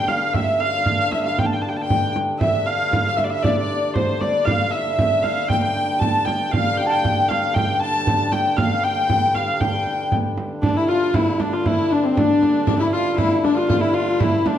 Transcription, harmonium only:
Already playing: G2 D3
2.41 G2 D3
6.52 G2 D3
10.65 G2 D3

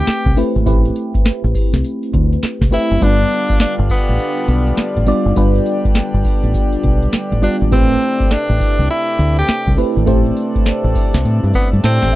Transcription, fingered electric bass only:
0.07 muted fingered electric bass stroke
0.26 C2
0.56 G#1
0.67 A1
1.15 muted fingered electric bass stroke
1.44 A1
1.73 C2
2.14 D2
2.43 muted fingered electric bass stroke
2.61 C2
2.91 F#1
3.02 G1
3.50 muted fingered electric bass stroke
3.79 G1
4.09 A1
4.48 B1
4.78 muted fingered electric bass stroke
4.96 A1
5.26 F#1
5.37 G1
5.85 muted fingered electric bass stroke
6.14 G1
6.43 A1
6.84 B1
7.13 muted fingered electric bass stroke
7.32 A1
7.61 G#1
7.72 A1
8.20 muted fingered electric bass stroke
8.49 A1
8.79 C2
9.19 D2
9.48 muted fingered electric bass stroke
9.67 C2
9.96 G#1
10.07 A1
10.56 muted fingered electric bass stroke
10.84 A1
11.14 C2
11.25 A2
11.44 G2
11.73 G2
11.84 A2
12.02 A1

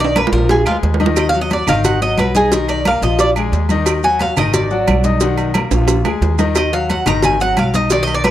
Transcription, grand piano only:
Already playing: D#5
0.16 A#3 A#4 A#5
0.33 F3 F4 F5
0.66 G#3 G#4 G#5
1.00 D#3 D#4 D#5
1.33 F#3 F#4 F#5
1.67 D#3 D#4 D#5
2.01 F#3 F#4 F#5
2.35 D#4 D#5 D#6
2.52 D#3 D#4 D#5
2.86 A#3 A#4 A#5
3.03 F3 F4 F5
3.36 G#3 G#4 G#5
3.70 D#3 D#4 D#5
4.04 F#3 F#4 F#5
4.37 D#3 D#4 D#5
4.71 F#3 F#4 F#5
5.04 D#4 D#5 D#6
5.22 D#3 D#4 F#5
5.56 A#3 A#4 A#5
5.72 F3 F4 F5
6.05 G#3 G#4 G#5
6.39 D#3 D#4 D#5
6.73 F#3 F#4 F#5
7.06 D#3 D#4 D#5
7.40 F#3 F#4 F#5
7.74 D#4 D#5 D#6
7.91 D#3 D#4 D#5
8.24 A#3 A#4 A#5

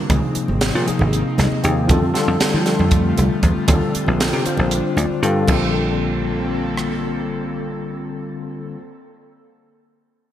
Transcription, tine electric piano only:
0.10 C3 F3 A#3 D#4 G#4
0.86 C3 F3 A#3 D#4 G#4
1.38 D#5
1.63 C3 F3 A#3 D#4 G#4 G5
1.88 D3 G3 C4 F4 A4
2.13 D3 G3 C4 F4 A4
2.65 D3 G3 C4 F4 A4
3.68 D3 G3 C4 F4 A4
4.45 D3 G3 C4 F4 C5
4.97 D5
5.23 D3 G3 C4 F4 A4 F5
5.47 D3 G3 C4 F4 A4

